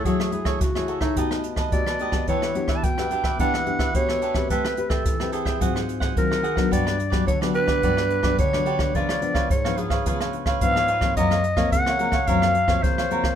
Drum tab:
HH |x-x-x-x-xxx-x-xx|xxxxxxxxx-xxx-x-|x-x-x-x-xxx-x-xx|xxxxxxxxx-xxx-x-|
SD |-r-r-r-r-r-r-r-r|-r-r-r-r-r-r-r-r|-r-r-r-r-r-r-r-r|-r-r-r-r-r-r-r-r|
BD |o--oo--oo--oo--o|o--oo--oo--oo--o|o--oo--oo--oo--o|o--oo--oo--oo--o|

HH |x-x-x-x-xxx-x-xx|xxxxxxxxx-xxx-x-|
SD |-r-r-r-r-r-r-r-r|-r-r-r-r-r-r-r-r|
BD |o--oo--oo--oo--o|o--oo--oo--oo--o|